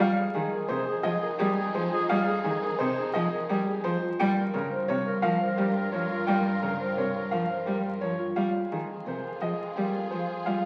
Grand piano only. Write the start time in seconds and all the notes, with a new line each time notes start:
0.01 F5
0.35 G#4
0.68 C5
1.03 D#5
1.38 G4
1.75 C5
2.09 F5
2.44 G#4
2.79 C5
3.14 D#5
3.50 G4
3.84 C5
4.20 G5
4.54 A#4
4.88 C#5
5.22 F5
5.57 G4
5.92 C#5
6.27 G5
6.62 A#4
6.98 C#5
7.31 F5
7.66 G4
8.01 C#5
8.36 F5
8.72 G#4
9.08 C5
9.42 D#5
9.76 G4
10.11 C5
10.46 F5